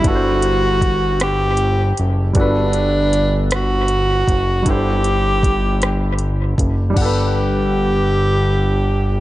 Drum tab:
CC |------|------|------|x-----|
HH |xxxxxx|xxxxxx|xxxxxx|------|
SD |---r--|---r--|---r--|------|
BD |o-o---|o----o|o-o--o|o-----|